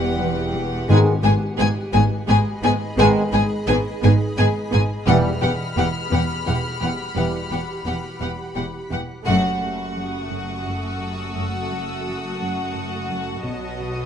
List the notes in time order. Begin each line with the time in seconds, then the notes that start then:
Already playing: E1 E2 E3 G3 B3 G4 F#5 B5 C6
0.20 E3
0.54 E2
0.89 G#1 G#2 D#3 G#3 B3 G#4 D#5 G#5 B5
1.23 G#1 G#2 G#3 B3 G#4 G#5
1.57 G#1 G#2 G#3 B3 G#4 G#5
1.93 G#1 G#2 B3 G#4 G#5
2.28 G#1 G#2 G#3 B3 G#4 G#5
2.63 G#1 G#2 B3 G#4 G#5
2.97 G#1 G#2 D#3 G#3 B3 G#4 G#5
3.32 G#1 G#2 G#3 B3 G#4 G#5
3.67 G#1 G#2 G#3 B3 G#4 G#5
4.02 G#1 G#2 B3 G#4 G#5
4.37 G#1 G#2 G#3 B3 G#4 G#5
4.72 G#1 G#2 B3 G#4 G#5
5.06 E1 E2 E3 G3 B3 G4 F#5 B5 F6
5.41 E1 E2 E3 B3 G4 F#5
5.76 E1 E2 E3 B3 G4 F#5
6.11 E1 E2 B3 G4 F#5
6.46 E1 E2 E3 B3 G4 F#5
6.80 E1 E2 B3 G4 F#5
7.16 E1 E2 E3 G3 B3 G4 F#5
7.51 E1 E2 E3 B3 G4 F#5
7.85 E1 E2 E3 B3 G4 F#5
8.21 E1 E2 B3 G4 F#5
8.55 E1 E2 E3 B3 G4 F#5
8.90 E1 E2 B3 G4 F#5
9.26 F#1 F#2 A3 F#4 F#5 A5 C#6
9.61 F#2
9.96 F#3 D#6
10.31 F#2
10.65 F#2 E6
11.00 F#2
11.36 F#2
11.70 F#2
12.06 F#3
12.40 F#2
12.46 D#6
12.75 F#2
13.10 F#2
13.44 B1 B2 F#3 F#4 D#5 F#5 D#6
13.80 B2